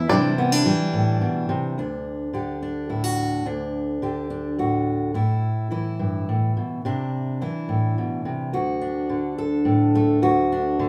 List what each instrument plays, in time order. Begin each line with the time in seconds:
0.09 steel-string acoustic guitar C3 E3 G3 D4 E4, five-string banjo D5
0.38 steel-string acoustic guitar B3
0.52 steel-string acoustic guitar D4
0.65 steel-string acoustic guitar E3 G3
0.93 steel-string acoustic guitar A2
1.21 steel-string acoustic guitar B2
1.49 steel-string acoustic guitar C3
1.78 steel-string acoustic guitar D2 D4
2.33 steel-string acoustic guitar D3 G4
2.62 steel-string acoustic guitar D4
2.89 steel-string acoustic guitar A2 E4
3.04 steel-string acoustic guitar F#4
3.45 steel-string acoustic guitar D2 D4
4.02 steel-string acoustic guitar D3 G4
4.30 steel-string acoustic guitar D4
4.58 steel-string acoustic guitar A2 F#4
5.14 steel-string acoustic guitar A2 E4
5.71 steel-string acoustic guitar E3 E4
5.99 steel-string acoustic guitar G2
6.29 steel-string acoustic guitar A2
6.57 steel-string acoustic guitar B2
6.85 steel-string acoustic guitar C3 D4
7.41 steel-string acoustic guitar E3 E4
7.69 steel-string acoustic guitar A2
7.98 steel-string acoustic guitar B2
8.25 steel-string acoustic guitar C3
8.53 steel-string acoustic guitar D2 F#4
8.81 steel-string acoustic guitar D4
9.09 steel-string acoustic guitar D3
9.38 steel-string acoustic guitar A4
9.65 steel-string acoustic guitar A2
9.95 steel-string acoustic guitar A3
10.22 steel-string acoustic guitar D2 F#4
10.52 steel-string acoustic guitar D4
10.79 steel-string acoustic guitar D3